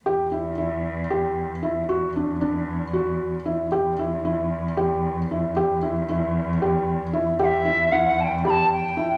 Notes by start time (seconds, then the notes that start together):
0.05 E2 G4
0.32 E4
0.58 E4
1.10 G4
1.63 E4
1.89 E2 F#4
2.16 D4
2.41 D4
2.93 F#4
3.46 E4
3.72 E2 G4
3.99 E4
4.25 E4
4.77 G4
5.31 E4
5.56 E2 G4
5.83 E4
6.09 E4
6.62 G4
7.13 E4
7.39 E2 G4 F#5
7.45 E5
7.65 E4
7.92 E4 F#5
8.20 G5 A5
8.45 G4 B5
8.50 A5
8.72 G5
8.97 E4